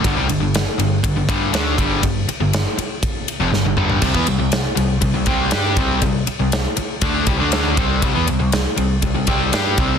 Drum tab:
CC |----------------|----------------|x---------------|----------------|
RD |x-x-x-x-x-x-x-x-|x-x-x-x-x-x-----|--x-x-x-x-x-x-x-|x-x-x-x-x-x-x-x-|
SD |----o-------o---|----o-------o---|----o-------o---|----o-------o---|
T2 |----------------|--------------o-|----------------|----------------|
FT |----------------|---------------o|----------------|----------------|
BD |o-------o-o---o-|o-------o-------|oo------o-o---o-|o-------o-o---o-|

CC |----------------|
RD |x-x-x-x-x-x-x-x-|
SD |----o-------o---|
T2 |----------------|
FT |----------------|
BD |o-------o-o---o-|